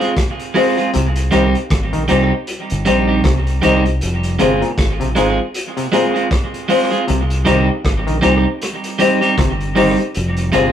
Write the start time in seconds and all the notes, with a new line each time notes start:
0.00 G#3 C4 F4 G#4, closed hi-hat
0.17 kick, cross-stick, closed hi-hat
0.40 closed hi-hat
0.54 G#3 C4 F4 G#4 C5, open hi-hat
0.77 G#3 C4 F4 G#4, closed hi-hat
0.94 C2 C3, closed hi-hat
1.16 closed hi-hat
1.31 C2 D#3 G3 C4 D#4 G4 C5, closed hi-hat
1.55 closed hi-hat
1.70 G#1, kick, cross-stick, closed hi-hat
1.93 A#1 D#3, closed hi-hat
2.08 C2 A#2 G3 C4 D#4 G4 C5, closed hi-hat
2.47 closed hi-hat
2.70 G1, closed hi-hat
2.85 A#1 G3 C4 D#4 G4 C5, closed hi-hat
3.08 G3 C4 D#4 G4
3.24 C2 C3, kick, cross-stick, closed hi-hat
3.47 closed hi-hat
3.62 C2 D#3 G3 C4 D#4 G4 C5, closed hi-hat
3.85 muted clean electric guitar stroke, closed hi-hat
4.01 F1, closed hi-hat
4.23 closed hi-hat
4.39 G1 C3 G#3 C4 F4 G#4 C5, closed hi-hat
4.62 A#2, closed hi-hat
4.78 G#1, kick, cross-stick, closed hi-hat
5.00 A#1 C3, closed hi-hat
5.15 G#1 G#2 G#3 C4 F4 G#4 C5, closed hi-hat
5.54 closed hi-hat
5.77 C3, closed hi-hat
5.92 A#2 G#3 C4 F4 G#4 C5, closed hi-hat
6.14 G#3 C4 F4 G#4, closed hi-hat
6.31 kick, cross-stick, closed hi-hat
6.54 closed hi-hat
6.68 G#3 C4 F4 G#4 C5, open hi-hat
6.91 G#3 C4 F4 G#4, closed hi-hat
7.08 C2 C3, closed hi-hat
7.30 closed hi-hat
7.45 C2 D#3 G3 C4 D#4 G4 C5, closed hi-hat
7.85 G#1, kick, cross-stick, closed hi-hat
8.07 A#1 D#3, closed hi-hat
8.21 C2 A#2 G3 C4 D#4 G4 C5, closed hi-hat
8.62 cross-stick, closed hi-hat
8.84 closed hi-hat
8.99 G3 C4 D#4 G4 C5, closed hi-hat
9.21 G3 C4 D#4 G4, closed hi-hat
9.38 G1 C3, kick, cross-stick, closed hi-hat
9.61 closed hi-hat
9.75 D#3 G3 C4 D#4 G4 C5, open hi-hat
9.98 muted clean electric guitar stroke, closed hi-hat
10.15 F1, closed hi-hat
10.37 closed hi-hat
10.52 G1 C3 G#3 C4 F4 G#4 C5, closed hi-hat